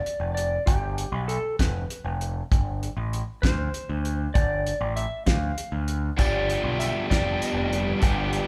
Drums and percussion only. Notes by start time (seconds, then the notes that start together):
0.06 closed hi-hat
0.37 closed hi-hat
0.67 kick, closed hi-hat
0.98 closed hi-hat
1.29 closed hi-hat
1.59 kick, snare, closed hi-hat
1.90 closed hi-hat
2.21 closed hi-hat
2.52 kick, closed hi-hat
2.83 closed hi-hat
3.13 closed hi-hat
3.43 kick, snare, closed hi-hat
3.74 closed hi-hat
4.05 closed hi-hat
4.35 kick, closed hi-hat
4.66 closed hi-hat
4.97 closed hi-hat
5.27 kick, snare, closed hi-hat
5.58 closed hi-hat
5.88 closed hi-hat
6.18 kick, closed hi-hat, tambourine
6.50 closed hi-hat
6.80 closed hi-hat, tambourine
7.11 kick, snare, closed hi-hat
7.42 closed hi-hat, tambourine
7.73 closed hi-hat
8.02 kick, closed hi-hat, tambourine
8.33 closed hi-hat